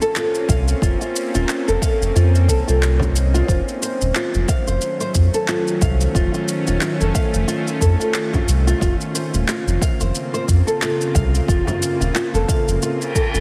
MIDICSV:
0, 0, Header, 1, 8, 480
1, 0, Start_track
1, 0, Tempo, 666667
1, 588, Time_signature, 4, 2, 24, 8
1, 9649, End_track
2, 0, Start_track
2, 0, Title_t, "Singing bowl"
2, 0, Program_c, 0, 14
2, 2504, Note_on_c, 0, 72, 67
2, 9649, Note_off_c, 0, 72, 0
2, 9649, End_track
3, 0, Start_track
3, 0, Title_t, "Nylon-string guitar"
3, 0, Program_c, 1, 24
3, 12, Note_on_c, 1, 69, 75
3, 107, Note_off_c, 1, 69, 0
3, 119, Note_on_c, 1, 65, 80
3, 343, Note_off_c, 1, 65, 0
3, 354, Note_on_c, 1, 77, 91
3, 480, Note_off_c, 1, 77, 0
3, 593, Note_on_c, 1, 65, 75
3, 720, Note_off_c, 1, 65, 0
3, 728, Note_on_c, 1, 65, 71
3, 953, Note_off_c, 1, 65, 0
3, 969, Note_on_c, 1, 65, 72
3, 1193, Note_off_c, 1, 65, 0
3, 1208, Note_on_c, 1, 69, 70
3, 1305, Note_off_c, 1, 69, 0
3, 1310, Note_on_c, 1, 77, 93
3, 1438, Note_off_c, 1, 77, 0
3, 1553, Note_on_c, 1, 65, 77
3, 1680, Note_off_c, 1, 65, 0
3, 1791, Note_on_c, 1, 69, 67
3, 1919, Note_off_c, 1, 69, 0
3, 1925, Note_on_c, 1, 65, 75
3, 2151, Note_off_c, 1, 65, 0
3, 2165, Note_on_c, 1, 65, 72
3, 2264, Note_off_c, 1, 65, 0
3, 2407, Note_on_c, 1, 65, 103
3, 2499, Note_off_c, 1, 65, 0
3, 2509, Note_on_c, 1, 65, 94
3, 2586, Note_off_c, 1, 65, 0
3, 2751, Note_on_c, 1, 72, 74
3, 2879, Note_off_c, 1, 72, 0
3, 2993, Note_on_c, 1, 65, 76
3, 3220, Note_off_c, 1, 65, 0
3, 3230, Note_on_c, 1, 77, 85
3, 3358, Note_off_c, 1, 77, 0
3, 3364, Note_on_c, 1, 72, 70
3, 3590, Note_off_c, 1, 72, 0
3, 3604, Note_on_c, 1, 72, 73
3, 3664, Note_off_c, 1, 72, 0
3, 3845, Note_on_c, 1, 69, 72
3, 3944, Note_off_c, 1, 69, 0
3, 3949, Note_on_c, 1, 65, 81
3, 4178, Note_off_c, 1, 65, 0
3, 4189, Note_on_c, 1, 77, 88
3, 4318, Note_off_c, 1, 77, 0
3, 4431, Note_on_c, 1, 65, 84
3, 4559, Note_off_c, 1, 65, 0
3, 4566, Note_on_c, 1, 65, 69
3, 4791, Note_off_c, 1, 65, 0
3, 4805, Note_on_c, 1, 65, 73
3, 4899, Note_off_c, 1, 65, 0
3, 4910, Note_on_c, 1, 65, 80
3, 4986, Note_off_c, 1, 65, 0
3, 5042, Note_on_c, 1, 69, 71
3, 5142, Note_off_c, 1, 69, 0
3, 5147, Note_on_c, 1, 77, 86
3, 5276, Note_off_c, 1, 77, 0
3, 5383, Note_on_c, 1, 65, 83
3, 5515, Note_off_c, 1, 65, 0
3, 5622, Note_on_c, 1, 69, 73
3, 5754, Note_off_c, 1, 69, 0
3, 5758, Note_on_c, 1, 65, 73
3, 5987, Note_off_c, 1, 65, 0
3, 5999, Note_on_c, 1, 65, 75
3, 6101, Note_off_c, 1, 65, 0
3, 6244, Note_on_c, 1, 65, 94
3, 6338, Note_off_c, 1, 65, 0
3, 6346, Note_on_c, 1, 65, 103
3, 6424, Note_off_c, 1, 65, 0
3, 6587, Note_on_c, 1, 72, 77
3, 6717, Note_off_c, 1, 72, 0
3, 6828, Note_on_c, 1, 65, 80
3, 7058, Note_off_c, 1, 65, 0
3, 7069, Note_on_c, 1, 77, 96
3, 7198, Note_off_c, 1, 77, 0
3, 7205, Note_on_c, 1, 72, 75
3, 7431, Note_off_c, 1, 72, 0
3, 7444, Note_on_c, 1, 72, 68
3, 7503, Note_off_c, 1, 72, 0
3, 7682, Note_on_c, 1, 69, 72
3, 7782, Note_off_c, 1, 69, 0
3, 7790, Note_on_c, 1, 65, 78
3, 8019, Note_off_c, 1, 65, 0
3, 8026, Note_on_c, 1, 77, 96
3, 8156, Note_off_c, 1, 77, 0
3, 8268, Note_on_c, 1, 65, 88
3, 8397, Note_off_c, 1, 65, 0
3, 8405, Note_on_c, 1, 65, 72
3, 8631, Note_off_c, 1, 65, 0
3, 8644, Note_on_c, 1, 65, 69
3, 8738, Note_off_c, 1, 65, 0
3, 8750, Note_on_c, 1, 65, 79
3, 8826, Note_off_c, 1, 65, 0
3, 8887, Note_on_c, 1, 69, 74
3, 8984, Note_off_c, 1, 69, 0
3, 8988, Note_on_c, 1, 77, 91
3, 9117, Note_off_c, 1, 77, 0
3, 9234, Note_on_c, 1, 65, 81
3, 9360, Note_off_c, 1, 65, 0
3, 9473, Note_on_c, 1, 69, 70
3, 9600, Note_off_c, 1, 69, 0
3, 9606, Note_on_c, 1, 65, 73
3, 9649, Note_off_c, 1, 65, 0
3, 9649, End_track
4, 0, Start_track
4, 0, Title_t, "Synth drone"
4, 0, Program_c, 2, 95
4, 0, Note_on_c, 2, 58, 70
4, 0, Note_on_c, 2, 60, 74
4, 0, Note_on_c, 2, 61, 77
4, 0, Note_on_c, 2, 65, 85
4, 570, Note_off_c, 2, 65, 0
4, 587, Note_on_c, 2, 63, 80
4, 2479, Note_off_c, 2, 60, 0
4, 2480, Note_off_c, 2, 61, 0
4, 2481, Note_off_c, 2, 58, 0
4, 2488, Note_off_c, 2, 63, 0
4, 2506, Note_on_c, 2, 54, 80
4, 2507, Note_on_c, 2, 61, 71
4, 2511, Note_on_c, 2, 57, 73
4, 2512, Note_on_c, 2, 51, 75
4, 4408, Note_off_c, 2, 54, 0
4, 4434, Note_on_c, 2, 65, 84
4, 6319, Note_off_c, 2, 61, 0
4, 6321, Note_off_c, 2, 51, 0
4, 6321, Note_off_c, 2, 57, 0
4, 6332, Note_off_c, 2, 65, 0
4, 6353, Note_on_c, 2, 58, 68
4, 6354, Note_on_c, 2, 49, 81
4, 6355, Note_on_c, 2, 60, 72
4, 6355, Note_on_c, 2, 65, 86
4, 9649, Note_off_c, 2, 49, 0
4, 9649, Note_off_c, 2, 58, 0
4, 9649, Note_off_c, 2, 60, 0
4, 9649, Note_off_c, 2, 65, 0
4, 9649, End_track
5, 0, Start_track
5, 0, Title_t, "Analog synth bass"
5, 0, Program_c, 3, 38
5, 352, Note_on_c, 3, 36, 86
5, 531, Note_off_c, 3, 36, 0
5, 591, Note_on_c, 3, 29, 101
5, 687, Note_off_c, 3, 29, 0
5, 970, Note_on_c, 3, 27, 91
5, 1042, Note_off_c, 3, 27, 0
5, 1212, Note_on_c, 3, 29, 97
5, 1283, Note_off_c, 3, 29, 0
5, 1447, Note_on_c, 3, 29, 91
5, 1520, Note_off_c, 3, 29, 0
5, 1553, Note_on_c, 3, 41, 91
5, 1789, Note_on_c, 3, 36, 79
5, 1800, Note_off_c, 3, 41, 0
5, 1886, Note_off_c, 3, 36, 0
5, 1932, Note_on_c, 3, 36, 81
5, 2465, Note_off_c, 3, 36, 0
5, 2508, Note_on_c, 3, 29, 104
5, 2606, Note_off_c, 3, 29, 0
5, 2891, Note_on_c, 3, 27, 92
5, 2962, Note_off_c, 3, 27, 0
5, 3130, Note_on_c, 3, 29, 100
5, 3202, Note_off_c, 3, 29, 0
5, 3367, Note_on_c, 3, 29, 87
5, 3440, Note_off_c, 3, 29, 0
5, 3710, Note_on_c, 3, 41, 93
5, 3807, Note_off_c, 3, 41, 0
5, 4188, Note_on_c, 3, 36, 84
5, 4369, Note_off_c, 3, 36, 0
5, 4428, Note_on_c, 3, 29, 105
5, 4526, Note_off_c, 3, 29, 0
5, 4808, Note_on_c, 3, 27, 87
5, 4881, Note_off_c, 3, 27, 0
5, 5046, Note_on_c, 3, 29, 101
5, 5120, Note_off_c, 3, 29, 0
5, 5284, Note_on_c, 3, 29, 87
5, 5359, Note_off_c, 3, 29, 0
5, 5630, Note_on_c, 3, 41, 94
5, 5726, Note_off_c, 3, 41, 0
5, 6107, Note_on_c, 3, 36, 92
5, 6289, Note_off_c, 3, 36, 0
5, 6348, Note_on_c, 3, 29, 104
5, 6445, Note_off_c, 3, 29, 0
5, 6724, Note_on_c, 3, 27, 90
5, 6799, Note_off_c, 3, 27, 0
5, 6961, Note_on_c, 3, 29, 99
5, 7037, Note_off_c, 3, 29, 0
5, 7205, Note_on_c, 3, 29, 88
5, 7279, Note_off_c, 3, 29, 0
5, 7551, Note_on_c, 3, 41, 85
5, 7647, Note_off_c, 3, 41, 0
5, 8028, Note_on_c, 3, 36, 97
5, 8209, Note_off_c, 3, 36, 0
5, 8269, Note_on_c, 3, 29, 103
5, 8366, Note_off_c, 3, 29, 0
5, 8643, Note_on_c, 3, 27, 91
5, 8718, Note_off_c, 3, 27, 0
5, 8882, Note_on_c, 3, 29, 98
5, 8958, Note_off_c, 3, 29, 0
5, 9127, Note_on_c, 3, 29, 94
5, 9200, Note_off_c, 3, 29, 0
5, 9603, Note_on_c, 3, 29, 82
5, 9649, Note_off_c, 3, 29, 0
5, 9649, End_track
6, 0, Start_track
6, 0, Title_t, "Reverse cymbal"
6, 0, Program_c, 4, 119
6, 9227, Note_on_c, 4, 60, 72
6, 9649, Note_off_c, 4, 60, 0
6, 9649, End_track
7, 0, Start_track
7, 0, Title_t, "Frame drum"
7, 2156, Note_on_c, 9, 64, 88
7, 2228, Note_off_c, 9, 64, 0
7, 6002, Note_on_c, 9, 64, 80
7, 6074, Note_off_c, 9, 64, 0
7, 8403, Note_on_c, 9, 64, 79
7, 8475, Note_off_c, 9, 64, 0
7, 9649, End_track
8, 0, Start_track
8, 0, Title_t, "Drums"
8, 12, Note_on_c, 9, 82, 36
8, 84, Note_off_c, 9, 82, 0
8, 112, Note_on_c, 9, 39, 98
8, 117, Note_on_c, 9, 82, 46
8, 184, Note_off_c, 9, 39, 0
8, 189, Note_off_c, 9, 82, 0
8, 249, Note_on_c, 9, 82, 21
8, 321, Note_off_c, 9, 82, 0
8, 351, Note_on_c, 9, 36, 107
8, 355, Note_on_c, 9, 82, 77
8, 423, Note_off_c, 9, 36, 0
8, 427, Note_off_c, 9, 82, 0
8, 490, Note_on_c, 9, 82, 35
8, 562, Note_off_c, 9, 82, 0
8, 590, Note_on_c, 9, 36, 117
8, 597, Note_on_c, 9, 82, 46
8, 662, Note_off_c, 9, 36, 0
8, 669, Note_off_c, 9, 82, 0
8, 730, Note_on_c, 9, 82, 21
8, 802, Note_off_c, 9, 82, 0
8, 835, Note_on_c, 9, 82, 77
8, 907, Note_off_c, 9, 82, 0
8, 970, Note_on_c, 9, 82, 29
8, 1042, Note_off_c, 9, 82, 0
8, 1070, Note_on_c, 9, 39, 88
8, 1075, Note_on_c, 9, 82, 41
8, 1142, Note_off_c, 9, 39, 0
8, 1147, Note_off_c, 9, 82, 0
8, 1212, Note_on_c, 9, 82, 23
8, 1284, Note_off_c, 9, 82, 0
8, 1309, Note_on_c, 9, 36, 107
8, 1315, Note_on_c, 9, 82, 84
8, 1381, Note_off_c, 9, 36, 0
8, 1387, Note_off_c, 9, 82, 0
8, 1457, Note_on_c, 9, 82, 36
8, 1529, Note_off_c, 9, 82, 0
8, 1556, Note_on_c, 9, 82, 40
8, 1628, Note_off_c, 9, 82, 0
8, 1694, Note_on_c, 9, 82, 22
8, 1766, Note_off_c, 9, 82, 0
8, 1788, Note_on_c, 9, 36, 62
8, 1794, Note_on_c, 9, 82, 78
8, 1860, Note_off_c, 9, 36, 0
8, 1866, Note_off_c, 9, 82, 0
8, 1934, Note_on_c, 9, 82, 33
8, 2006, Note_off_c, 9, 82, 0
8, 2035, Note_on_c, 9, 39, 89
8, 2039, Note_on_c, 9, 82, 45
8, 2107, Note_off_c, 9, 39, 0
8, 2111, Note_off_c, 9, 82, 0
8, 2165, Note_on_c, 9, 36, 60
8, 2177, Note_on_c, 9, 82, 21
8, 2237, Note_off_c, 9, 36, 0
8, 2249, Note_off_c, 9, 82, 0
8, 2274, Note_on_c, 9, 82, 76
8, 2346, Note_off_c, 9, 82, 0
8, 2411, Note_on_c, 9, 82, 33
8, 2483, Note_off_c, 9, 82, 0
8, 2508, Note_on_c, 9, 36, 109
8, 2515, Note_on_c, 9, 82, 39
8, 2580, Note_off_c, 9, 36, 0
8, 2587, Note_off_c, 9, 82, 0
8, 2653, Note_on_c, 9, 82, 19
8, 2725, Note_off_c, 9, 82, 0
8, 2755, Note_on_c, 9, 82, 77
8, 2827, Note_off_c, 9, 82, 0
8, 2890, Note_on_c, 9, 82, 30
8, 2962, Note_off_c, 9, 82, 0
8, 2989, Note_on_c, 9, 39, 90
8, 2993, Note_on_c, 9, 82, 41
8, 3061, Note_off_c, 9, 39, 0
8, 3065, Note_off_c, 9, 82, 0
8, 3126, Note_on_c, 9, 82, 20
8, 3198, Note_off_c, 9, 82, 0
8, 3228, Note_on_c, 9, 36, 100
8, 3230, Note_on_c, 9, 82, 77
8, 3300, Note_off_c, 9, 36, 0
8, 3302, Note_off_c, 9, 82, 0
8, 3366, Note_on_c, 9, 82, 34
8, 3438, Note_off_c, 9, 82, 0
8, 3466, Note_on_c, 9, 82, 39
8, 3538, Note_off_c, 9, 82, 0
8, 3604, Note_on_c, 9, 82, 21
8, 3676, Note_off_c, 9, 82, 0
8, 3706, Note_on_c, 9, 82, 72
8, 3707, Note_on_c, 9, 36, 63
8, 3778, Note_off_c, 9, 82, 0
8, 3779, Note_off_c, 9, 36, 0
8, 3845, Note_on_c, 9, 82, 32
8, 3917, Note_off_c, 9, 82, 0
8, 3945, Note_on_c, 9, 39, 93
8, 3950, Note_on_c, 9, 82, 39
8, 4017, Note_off_c, 9, 39, 0
8, 4022, Note_off_c, 9, 82, 0
8, 4086, Note_on_c, 9, 82, 19
8, 4158, Note_off_c, 9, 82, 0
8, 4187, Note_on_c, 9, 36, 108
8, 4188, Note_on_c, 9, 82, 71
8, 4259, Note_off_c, 9, 36, 0
8, 4260, Note_off_c, 9, 82, 0
8, 4326, Note_on_c, 9, 82, 35
8, 4398, Note_off_c, 9, 82, 0
8, 4427, Note_on_c, 9, 36, 112
8, 4432, Note_on_c, 9, 82, 42
8, 4499, Note_off_c, 9, 36, 0
8, 4504, Note_off_c, 9, 82, 0
8, 4566, Note_on_c, 9, 82, 20
8, 4638, Note_off_c, 9, 82, 0
8, 4668, Note_on_c, 9, 82, 71
8, 4740, Note_off_c, 9, 82, 0
8, 4804, Note_on_c, 9, 82, 28
8, 4876, Note_off_c, 9, 82, 0
8, 4903, Note_on_c, 9, 39, 92
8, 4907, Note_on_c, 9, 82, 40
8, 4975, Note_off_c, 9, 39, 0
8, 4979, Note_off_c, 9, 82, 0
8, 5046, Note_on_c, 9, 82, 21
8, 5118, Note_off_c, 9, 82, 0
8, 5146, Note_on_c, 9, 36, 97
8, 5149, Note_on_c, 9, 82, 72
8, 5218, Note_off_c, 9, 36, 0
8, 5221, Note_off_c, 9, 82, 0
8, 5285, Note_on_c, 9, 82, 31
8, 5357, Note_off_c, 9, 82, 0
8, 5389, Note_on_c, 9, 82, 41
8, 5461, Note_off_c, 9, 82, 0
8, 5526, Note_on_c, 9, 82, 20
8, 5598, Note_off_c, 9, 82, 0
8, 5626, Note_on_c, 9, 36, 60
8, 5629, Note_on_c, 9, 82, 65
8, 5698, Note_off_c, 9, 36, 0
8, 5701, Note_off_c, 9, 82, 0
8, 5766, Note_on_c, 9, 82, 32
8, 5838, Note_off_c, 9, 82, 0
8, 5861, Note_on_c, 9, 39, 92
8, 5866, Note_on_c, 9, 82, 38
8, 5933, Note_off_c, 9, 39, 0
8, 5938, Note_off_c, 9, 82, 0
8, 6002, Note_on_c, 9, 36, 55
8, 6005, Note_on_c, 9, 82, 19
8, 6074, Note_off_c, 9, 36, 0
8, 6077, Note_off_c, 9, 82, 0
8, 6110, Note_on_c, 9, 82, 78
8, 6182, Note_off_c, 9, 82, 0
8, 6248, Note_on_c, 9, 82, 32
8, 6320, Note_off_c, 9, 82, 0
8, 6346, Note_on_c, 9, 36, 109
8, 6351, Note_on_c, 9, 82, 39
8, 6418, Note_off_c, 9, 36, 0
8, 6423, Note_off_c, 9, 82, 0
8, 6486, Note_on_c, 9, 82, 19
8, 6558, Note_off_c, 9, 82, 0
8, 6590, Note_on_c, 9, 82, 66
8, 6662, Note_off_c, 9, 82, 0
8, 6725, Note_on_c, 9, 82, 30
8, 6797, Note_off_c, 9, 82, 0
8, 6826, Note_on_c, 9, 39, 90
8, 6831, Note_on_c, 9, 82, 38
8, 6898, Note_off_c, 9, 39, 0
8, 6903, Note_off_c, 9, 82, 0
8, 6969, Note_on_c, 9, 82, 19
8, 7041, Note_off_c, 9, 82, 0
8, 7067, Note_on_c, 9, 36, 96
8, 7073, Note_on_c, 9, 82, 73
8, 7139, Note_off_c, 9, 36, 0
8, 7145, Note_off_c, 9, 82, 0
8, 7204, Note_on_c, 9, 82, 32
8, 7276, Note_off_c, 9, 82, 0
8, 7308, Note_on_c, 9, 82, 36
8, 7380, Note_off_c, 9, 82, 0
8, 7447, Note_on_c, 9, 82, 20
8, 7519, Note_off_c, 9, 82, 0
8, 7547, Note_on_c, 9, 36, 54
8, 7550, Note_on_c, 9, 82, 66
8, 7619, Note_off_c, 9, 36, 0
8, 7622, Note_off_c, 9, 82, 0
8, 7687, Note_on_c, 9, 82, 31
8, 7759, Note_off_c, 9, 82, 0
8, 7789, Note_on_c, 9, 39, 99
8, 7793, Note_on_c, 9, 82, 43
8, 7861, Note_off_c, 9, 39, 0
8, 7865, Note_off_c, 9, 82, 0
8, 7929, Note_on_c, 9, 82, 21
8, 8001, Note_off_c, 9, 82, 0
8, 8028, Note_on_c, 9, 36, 103
8, 8031, Note_on_c, 9, 82, 69
8, 8100, Note_off_c, 9, 36, 0
8, 8103, Note_off_c, 9, 82, 0
8, 8170, Note_on_c, 9, 82, 32
8, 8242, Note_off_c, 9, 82, 0
8, 8268, Note_on_c, 9, 36, 115
8, 8275, Note_on_c, 9, 82, 43
8, 8340, Note_off_c, 9, 36, 0
8, 8347, Note_off_c, 9, 82, 0
8, 8409, Note_on_c, 9, 82, 20
8, 8481, Note_off_c, 9, 82, 0
8, 8514, Note_on_c, 9, 82, 71
8, 8586, Note_off_c, 9, 82, 0
8, 8651, Note_on_c, 9, 82, 30
8, 8723, Note_off_c, 9, 82, 0
8, 8750, Note_on_c, 9, 39, 93
8, 8755, Note_on_c, 9, 82, 40
8, 8822, Note_off_c, 9, 39, 0
8, 8827, Note_off_c, 9, 82, 0
8, 8889, Note_on_c, 9, 82, 21
8, 8961, Note_off_c, 9, 82, 0
8, 8989, Note_on_c, 9, 36, 100
8, 8994, Note_on_c, 9, 82, 77
8, 9061, Note_off_c, 9, 36, 0
8, 9066, Note_off_c, 9, 82, 0
8, 9132, Note_on_c, 9, 82, 33
8, 9204, Note_off_c, 9, 82, 0
8, 9234, Note_on_c, 9, 82, 42
8, 9306, Note_off_c, 9, 82, 0
8, 9371, Note_on_c, 9, 82, 20
8, 9443, Note_off_c, 9, 82, 0
8, 9470, Note_on_c, 9, 36, 60
8, 9474, Note_on_c, 9, 82, 67
8, 9542, Note_off_c, 9, 36, 0
8, 9546, Note_off_c, 9, 82, 0
8, 9610, Note_on_c, 9, 82, 32
8, 9649, Note_off_c, 9, 82, 0
8, 9649, End_track
0, 0, End_of_file